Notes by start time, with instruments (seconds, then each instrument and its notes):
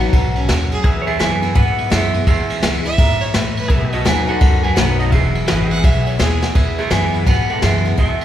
Already playing: upright bass A1, steel-string acoustic guitar B2 F#3 B3 D#4 F#4, clean electric guitar B4 F#5
0.00 ride
0.13 upright bass B1, steel-string acoustic guitar G#2, kick, ride
0.36 fiddle C#4, ride
0.49 upright bass D#2, steel-string acoustic guitar F#2, fiddle F#4, snare, ride
0.71 fiddle G#4, ride
0.84 steel-string acoustic guitar E2, upright bass E2, pedal steel guitar G#4 B4 E5, kick, ride
1.02 clean electric guitar C#5
1.07 clean electric guitar G#4 E5, ride
1.19 upright bass F#2, steel-string acoustic guitar E3 G#3 B3 E4, clean electric guitar B4 G#5, snare, ride
1.42 steel-string acoustic guitar B3 E4, ride
1.55 upright bass G#2, steel-string acoustic guitar B2, clean electric guitar B4 F#5, kick, ride
1.78 ride
1.90 upright bass F#2, steel-string acoustic guitar E3 G#3 B3 E4, clean electric guitar G#4 E5, snare, ride
2.14 steel-string acoustic guitar B3 E4, ride
2.27 upright bass E2, steel-string acoustic guitar E2, clean electric guitar G#4 E5, kick, ride
2.50 ride
2.62 upright bass C#2, steel-string acoustic guitar E3 G#3 B3 E4, snare, ride
2.85 steel-string acoustic guitar B3 E4, fiddle E5, ride
2.98 upright bass D#2, steel-string acoustic guitar G#2, kick, ride
3.21 fiddle C#5, muted upright bass stroke, ride
3.34 upright bass E2, steel-string acoustic guitar A2, fiddle B4, snare, ride
3.57 fiddle B4, ride
3.68 upright bass B1, steel-string acoustic guitar B2, pedal steel guitar G#4 B4 E5, kick, ride
3.91 pedal steel guitar F#4 D#5, clean electric guitar F#4 D#5, ride
4.05 upright bass D#2, steel-string acoustic guitar F#3 B3 D#4 F#4, clean electric guitar B4 G#5, snare, ride
4.27 steel-string acoustic guitar D#4 F#4, clean electric guitar A4 F#5, ride
4.41 upright bass C#2, steel-string acoustic guitar F#2, kick, ride
4.64 clean electric guitar B4 G#5, ride
4.75 upright bass B1, steel-string acoustic guitar F#3 B3 D#4 F#4, clean electric guitar B4 F#5, snare, ride
4.99 clean electric guitar F#4 D#5, ride
5.11 upright bass E1, steel-string acoustic guitar E2, clean electric guitar G#4 E5, kick, ride
5.35 ride
5.47 upright bass G#1, steel-string acoustic guitar E3 G#3 B3 E4, pedal steel guitar F#4 B4 D#5, snare, ride
5.70 pedal steel guitar G#4 E5, fiddle F#5, ride
5.84 upright bass B1, steel-string acoustic guitar B2, fiddle E5, kick, ride
6.07 fiddle C#5, ride
6.19 upright bass D#2, steel-string acoustic guitar E3 G#3 B3 E4, fiddle G#4, snare, ride
6.42 steel-string acoustic guitar B3 E4, snare
6.55 steel-string acoustic guitar E2, upright bass E2, pedal steel guitar G#4 B4 E5, kick, ride
6.78 clean electric guitar G#4 E5, ride
6.90 upright bass F#2, steel-string acoustic guitar E3 G#3 B3 E4, clean electric guitar B4 G#5, snare, ride
7.14 ride
7.26 upright bass G#2, steel-string acoustic guitar B2, clean electric guitar B4 F#5, kick, ride
7.49 clean electric guitar A4 F#5, ride
7.62 upright bass F#2, steel-string acoustic guitar E3 G#3 B3 E4, clean electric guitar G#4 E5, snare, ride
7.85 steel-string acoustic guitar B3 E4, ride
7.98 steel-string acoustic guitar E2, upright bass E2, clean electric guitar G#4 E5, kick, ride
8.21 ride